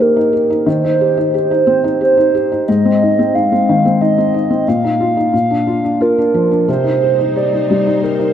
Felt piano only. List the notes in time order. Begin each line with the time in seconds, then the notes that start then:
Already playing: D#3 A#3 D#4
0.00 G4
0.17 D#4
0.33 G4
0.50 D#4
0.66 D#3
0.84 D#4
1.01 G4
1.17 D#4
1.34 G4
1.51 D#4
1.67 C4
1.84 D#4
2.01 G4
2.17 D#4
2.35 G4
2.52 D#4
2.69 G#2
2.85 C4
3.03 D#4
3.19 C4
3.35 D#4
3.52 C4
3.69 D#3
3.85 C4
4.01 D#4
4.18 C4
4.34 D#4
4.51 C4
4.68 A#2
4.84 D#4
5.00 F4
5.17 D#4
5.33 A#2
5.50 D4
5.67 F4
5.84 D4
6.01 F4
6.18 D4
6.34 F3
6.52 D4
6.68 C3
6.84 D#4
7.02 G4
7.19 D#4
7.36 G4
7.53 D#4
7.71 G3
7.87 D#4
8.03 G4
8.20 D#4